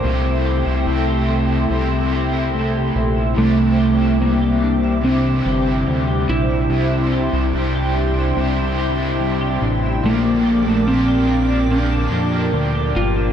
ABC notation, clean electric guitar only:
X:1
M:4/4
L:1/16
Q:1/4=72
K:Cmix
V:1 name="Clean electric guitar"
C, E G E A, G C E C, E G E A, G C E | C, E G E G, G D E C, E G E G, G D E | C, E G E G, G D E C, E G E G, G D E | B,, D G D F, G B, D B,, D G D F, G B, D |]